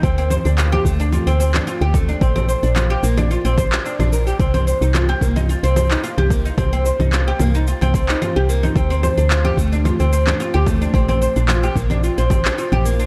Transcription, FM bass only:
X:1
M:4/4
L:1/16
Q:1/4=110
K:Cdor
V:1 name="FM bass" clef=bass
D,,2 z D,,2 z D,,2 z D,,2 z2 D,,2 z | B,,,2 z B,,,2 z B,,,2 z B,,,2 z2 B,,,2 z | C,,2 z C,,2 z C,,2 z C,,2 z2 C,,2 z | C,,2 z C,,2 z C,,2 z C,,2 z2 C,,2 z |
D,,2 z D,,2 z D,,2 z D,,2 z2 D,,2 z | B,,,2 z B,,,2 z B,,,2 z B,,,2 z2 B,,,2 z |]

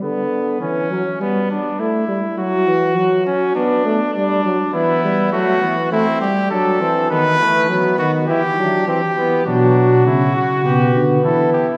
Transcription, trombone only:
X:1
M:4/4
L:1/8
Q:1/4=102
K:Em
V:1 name="Trombone" clef=bass
D,2 E, F, G, z A, G, | F, E, F,2 B, A, G, F, | E, G, F, E, A, G, F, E, | ^D, E, F, D, E, F, E, E, |
F,3 z B,4 |]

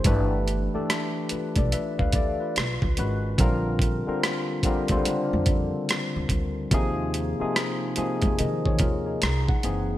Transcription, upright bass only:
X:1
M:4/4
L:1/16
Q:"Swing 16ths" 1/4=72
K:Bbdor
V:1 name="Upright bass" clef=bass
G,,,3 z4 =B,,, z =D,,2 z B,,, ^C,, A,,,2 | B,,,3 z4 =D,, z F,,2 z2 D,, D,,2 | E,,3 z4 F,, E,2 E,,2 C,, z _G,,,2 |]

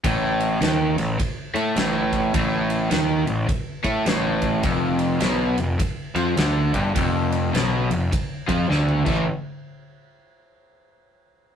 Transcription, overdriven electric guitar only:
X:1
M:4/4
L:1/8
Q:"Swing" 1/4=104
K:Gmix
V:1 name="Overdriven electric guitar" clef=bass
A,,2 ^D, A,, z A, A,,2 | A,,2 ^D, A,, z A, A,,2 | F,,2 B,, F,, z F, D, G,, | F,,2 B,, F,, z F, D, [A,,E,A,] |
z8 |]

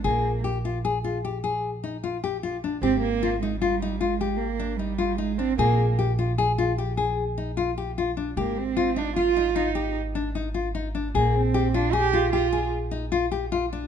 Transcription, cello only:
X:1
M:7/4
L:1/8
Q:1/4=152
K:Bbmix
V:1 name="Cello"
B,2 z12 | C B,2 A, G,2 A,2 B,2 G,2 A, C | B,2 z12 | B, C2 D F2 E2 z6 |
B, C2 D G2 F2 z6 |]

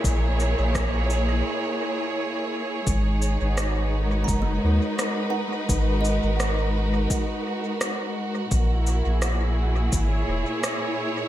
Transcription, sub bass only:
X:1
M:4/4
L:1/16
Q:"Swing 16ths" 1/4=85
K:G#m
V:1 name="Sub bass" clef=bass
A,,,3 A,,,4- A,,, z8 | G,,,3 G,,,4- G,,, F,,,2 D,, z4 z | G,,,3 G,,,4- G,,, z8 | A,,,3 A,,,4- A,,, G,,,2 E,,, z4 z |]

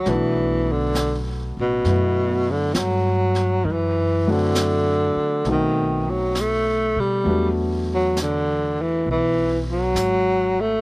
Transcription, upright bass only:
X:1
M:4/4
L:1/8
Q:"Swing" 1/4=67
K:Bphr
V:1 name="Upright bass" clef=bass
B,,,3 A,,, F,,2 G,,2 | F,,3 z B,,,3 B,, | E,,4 B,,,2 _A,,,2 |]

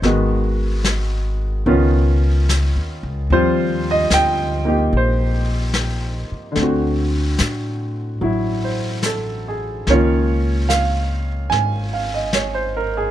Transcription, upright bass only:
X:1
M:4/4
L:1/8
Q:"Swing" 1/4=73
K:Dblyd
V:1 name="Upright bass" clef=bass
A,,,4 D,,2- (3D,, E,, D,, | E,,2 =D,,2 B,,,3 z | =D,,2 =A,,2 =A,,,4 | D,,4 A,,,4 |]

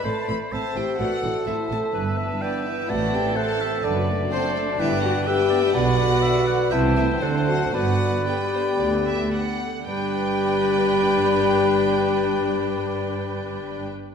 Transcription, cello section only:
X:1
M:4/4
L:1/8
Q:1/4=121
K:G
V:1 name="Cello section" clef=bass
A,, A,, A,, A,, A,, A,, A,, A,, | G,,2 z2 A,,2 z2 | F,,2 z2 G,,2 z2 | B,,2 z2 C,2 D,2 |
G,,2 z2 D,,2 z2 | G,,8- | G,,8 |]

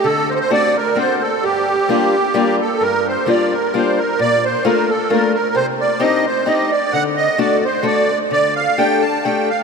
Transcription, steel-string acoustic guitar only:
X:1
M:3/4
L:1/8
Q:1/4=130
K:Gm
V:1 name="Steel-string acoustic guitar"
D,2 [A,CD^F] z [A,CDF] z | G,,2 [G,B,DF] z [G,B,DF] z | G,,2 [G,B,DF] z [G,B,DF] z | B,,2 [A,B,DF] z [A,B,DF] z |
C,2 [CDEG] z [CDEG] z | D,2 [A,D^FA] z [A,DFA] z | D,2 [A,DGA] z [A,DGA] z |]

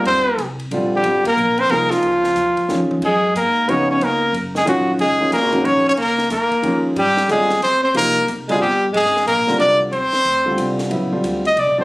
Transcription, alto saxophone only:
X:1
M:3/4
L:1/16
Q:"Swing" 1/4=182
K:Ablyd
V:1 name="Alto saxophone"
C4 z6 G,2- | G,2 B,4 C2 B,2 F,2- | F,8- F,2 z2 | [K:G#dor] G,4 A,4 C2 C2 |
A,4 z2 G,2 F,3 z | G,4 A,4 C2 C2 | A,4 A,6 z2 | =G,4 ^G,4 ^B,2 B,2 |
A,4 z2 G,2 =G,3 z | G,4 A,4 =D2 z2 | ^B,8- B,2 z2 | [K:Cm] z12 |]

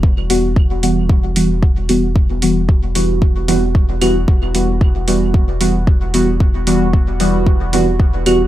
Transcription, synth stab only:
X:1
M:4/4
L:1/16
Q:1/4=113
K:Em
V:1 name="Synth stab"
z2 [E,G,B,F]2 z2 [E,G,B,F]4 [E,G,B,F] z3 [E,G,B,F] z | z2 [E,G,B,F]2 z2 [E,G,B,F]4 [E,G,B,F] z3 [E,G,B,F] z | z2 [E,G,B,F]2 z2 [E,G,B,F]4 [E,G,B,F] z3 [E,G,B,F] z | z2 [E,G,B,F]2 z2 [E,G,B,F]4 [E,G,B,F] z3 [E,G,B,F] z |]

